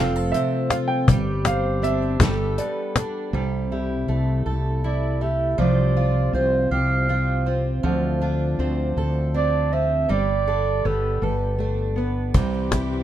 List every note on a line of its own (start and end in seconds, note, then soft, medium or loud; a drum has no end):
0.00 0.32 F1 medium
0.00 1.05 F3 medium
0.00 1.09 F3 medium
0.00 1.04 A3 medium
0.00 0.33 C4 medium
0.00 1.81 C4 medium
0.00 0.71 F4 medium
0.00 0.16 G4 medium
0.00 0.68 A4 medium
0.00 1.46 C5 medium
0.00 0.34 F5 medium
0.16 1.17 A4 medium
0.32 1.05 C3 medium
0.32 1.17 C4 medium
0.32 0.72 E5 medium
0.32 closed hi-hat medium
0.70 1.17 F4 medium
0.70 1.05 F4 medium
0.70 1.11 A4 medium
0.70 0.75 F5 medium
0.70 cajon slap medium
0.70 closed hi-hat soft
0.88 1.47 G5 medium
1.08 2.17 G1 loud
1.08 2.19 G3 medium
1.08 2.20 G3 medium
1.08 2.21 G4 medium
1.08 cajon bass loud
1.08 kick medium
1.08 closed hi-hat medium
1.45 2.29 C4 medium
1.45 2.17 C5 medium
1.45 1.85 F5 medium
1.45 cajon slap loud
1.45 closed hi-hat soft
1.82 2.20 C4 medium
1.82 2.29 D4 medium
1.82 2.55 E5 medium
1.82 cajon slap soft
1.82 closed hi-hat soft
2.01 cajon slap soft
2.20 2.57 G1 medium
2.20 5.58 G3 medium
2.20 3.33 G3 medium
2.20 2.95 D4 medium
2.20 3.30 G4 medium
2.20 2.93 A4 medium
2.20 2.59 A4 medium
2.20 cajon bass medium
2.20 kick medium
2.20 cajon slap medium
2.20 snare medium
2.20 closed hi-hat medium
2.58 3.41 B3 medium
2.58 4.07 A4 medium
2.58 2.94 D5 medium
2.58 cajon slap soft
2.58 closed hi-hat soft
2.96 3.30 D4 medium
2.96 3.42 D4 medium
2.96 cajon slap loud
2.96 closed hi-hat soft
3.33 4.05 C2 medium
3.33 4.45 C3 medium
3.33 5.58 G3 medium
3.72 4.83 E4 medium
3.72 5.20 G4 medium
4.08 4.44 C2 medium
4.08 5.20 A3 medium
4.08 5.59 A4 medium
4.46 5.55 C2 medium
4.46 5.66 A4 medium
4.46 muted steel-string acoustic guitar stroke medium
4.84 5.67 E4 medium
4.84 5.55 E4 medium
4.84 5.23 D5 medium
5.21 5.66 A3 medium
5.21 5.55 G4 soft
5.21 5.60 E5 medium
5.58 6.30 C2 medium
5.58 6.71 C3 medium
5.58 7.82 F3 medium
5.58 7.84 G3 medium
5.58 7.09 C4 medium
5.58 5.96 F4 medium
5.58 7.81 C5 medium
5.58 6.33 D5 medium
5.97 7.08 F4 medium
5.97 6.35 F4 medium
6.33 6.69 C2 medium
6.33 7.45 C4 medium
6.33 7.46 F4 soft
6.33 6.69 C5 medium
6.71 7.80 C2 medium
6.71 7.92 G4 medium
6.71 7.52 F5 medium
6.71 muted steel-string acoustic guitar stroke medium
7.09 9.33 C4 medium
7.09 7.92 F4 medium
7.46 7.91 C4 medium
7.46 7.80 F4 soft
7.83 8.55 D2 medium
7.83 8.96 D3 medium
7.83 10.09 F3 medium
8.22 9.33 D4 medium
8.22 9.71 F4 medium
8.59 8.95 D2 medium
8.59 9.72 C4 medium
8.59 10.05 C5 medium
8.97 10.05 D2 medium
8.97 10.17 A4 medium
8.97 muted steel-string acoustic guitar stroke medium
9.34 10.09 C4 medium
9.34 10.17 D4 medium
9.34 9.74 D5 loud
9.72 10.17 C4 medium
9.72 10.05 F4 soft
9.72 10.12 E5 medium
10.08 10.81 G1 medium
10.08 11.21 G3 medium
10.08 12.35 G3 medium
10.08 10.87 D5 loud
10.47 11.59 D4 medium
10.47 12.35 A4 medium
10.85 11.20 G1 medium
10.85 11.96 B3 medium
10.85 12.72 G4 medium
10.85 11.25 A4 medium
11.22 12.31 G1 medium
11.22 11.58 G3 medium
11.22 12.43 A4 medium
11.22 12.07 B4 medium
11.58 11.95 A3 medium
11.58 12.43 D4 medium
11.96 12.34 B3 medium
11.96 12.42 B3 medium
12.34 13.03 C2 medium
12.34 13.03 C3 medium
12.34 13.03 E3 medium
12.34 13.03 G3 medium
12.34 13.03 C4 medium
12.34 13.03 G4 medium
12.34 cajon bass medium
12.34 kick medium
12.34 cajon slap soft
12.34 ride medium
12.53 cajon slap soft
12.72 13.03 E4 medium
12.72 13.03 G4 medium
12.72 kick medium
12.72 cajon slap medium
12.72 ride soft
12.92 cajon slap soft